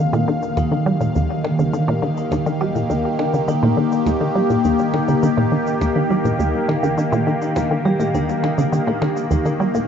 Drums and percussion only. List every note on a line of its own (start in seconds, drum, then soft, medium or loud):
0.13 shaker soft
0.43 shaker soft
0.57 percussion blips medium
0.57 shaker medium
1.01 shaker soft
1.15 shaker medium
1.45 percussion blips medium
1.59 shaker soft
1.74 shaker medium
2.17 shaker soft
2.32 percussion blips medium
2.32 shaker medium
2.46 shaker soft
2.76 shaker soft
2.90 shaker medium
3.19 percussion blips medium
3.34 shaker soft
3.48 shaker medium
3.92 shaker soft
4.07 percussion blips medium
4.07 shaker medium
4.50 shaker soft
4.64 shaker medium
4.79 shaker soft
4.94 percussion blips medium
5.08 shaker medium
5.23 shaker medium
5.67 shaker soft
5.81 percussion blips medium
5.81 shaker medium
6.25 shaker soft
6.40 shaker medium
6.69 percussion blips medium
6.84 shaker soft
6.98 shaker medium
7.13 shaker soft
7.42 shaker soft
7.56 percussion blips medium
7.56 shaker medium
8.00 shaker soft
8.15 shaker medium
8.29 shaker soft
8.44 percussion blips medium
8.58 shaker soft
8.73 shaker medium
9.02 percussion blips medium
9.17 shaker soft
9.31 shaker medium
9.46 shaker soft
9.75 shaker soft